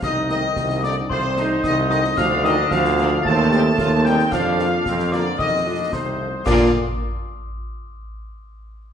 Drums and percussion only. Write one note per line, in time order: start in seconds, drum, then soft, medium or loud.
0.02 concert bass drum loud
0.02 snare medium
0.02 crash soft
0.29 snare medium
0.56 concert bass drum medium
0.56 snare medium
0.70 snare medium
0.83 snare medium
1.10 concert bass drum loud
1.37 snare medium
1.64 concert bass drum medium
1.64 snare medium
1.91 snare medium
2.04 snare medium
2.18 concert bass drum medium
2.18 snare loud
2.18 crash soft
2.44 snare medium
2.71 concert bass drum medium
2.71 snare medium
2.85 snare medium
2.98 snare medium
3.25 concert bass drum loud
3.52 snare medium
3.78 concert bass drum medium
3.78 snare medium
4.06 snare medium
4.19 snare medium
4.32 concert bass drum loud
4.32 snare medium
4.32 crash soft
4.59 snare medium
4.86 concert bass drum medium
4.86 snare medium
4.99 snare medium
5.12 snare medium
5.39 concert bass drum loud
5.39 snare medium
5.93 concert bass drum medium
5.93 snare medium
6.46 concert bass drum loud
6.46 snare loud
6.46 crash medium